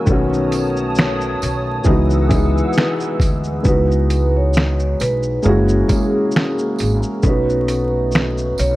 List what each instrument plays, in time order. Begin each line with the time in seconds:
Already playing: upright piano A#4
0.06 upright bass B1, upright piano D#3 A3 B3 C#4, analog synth pad C#5 A5 D#6, kick, shaker
0.12 upright piano F#4
0.34 shaker
0.52 closed hi-hat, tambourine, shaker
0.77 shaker
0.95 snare, shaker
0.99 finger snap
1.21 shaker
1.42 upright bass B1, closed hi-hat, tambourine, shaker
1.84 upright bass C#2, upright piano E3 G#3 B3, analog synth pad B4 F#5 E6, kick, shaker
1.89 upright piano D#4 F#4
2.10 shaker
2.29 upright piano E3 G#3 B3, kick, closed hi-hat, tambourine, shaker
2.33 upright piano D#4 G#4
2.58 shaker
2.73 shaker
2.78 finger snap, snare
3.00 shaker
3.20 upright bass D2, kick, closed hi-hat, tambourine, shaker
3.44 shaker
3.63 upright bass C#2, upright piano G#3 B3 D#4, kick, shaker
3.67 upright piano E4 F#4, vibraphone B4
3.92 shaker
4.10 closed hi-hat, tambourine, shaker
4.37 vibraphone C#5
4.53 snare, shaker
4.58 finger snap
4.80 shaker
5.00 upright bass B1, vibraphone B4, closed hi-hat, tambourine, shaker
5.23 shaker
5.43 upright bass F#1, upright piano G#3 A#3 C#4, vibraphone G#4, shaker
5.47 upright piano E4 F#4
5.69 shaker
5.88 upright piano G#3 A#3 C#4, vibraphone G#4, kick, closed hi-hat, tambourine, shaker
5.92 upright piano E4 G#4
6.31 shaker
6.36 finger snap, snare
6.59 shaker
6.79 upright bass G#1, closed hi-hat, tambourine, shaker
7.03 shaker
7.23 upright bass B1, upright piano A3 B3 C#4, vibraphone B4, kick, shaker
7.28 upright piano D#4 F#4
7.50 shaker
7.68 closed hi-hat, tambourine, shaker
8.12 snare, shaker
8.16 finger snap
8.38 shaker
8.58 upright bass B1, vibraphone C#5, closed hi-hat, tambourine, shaker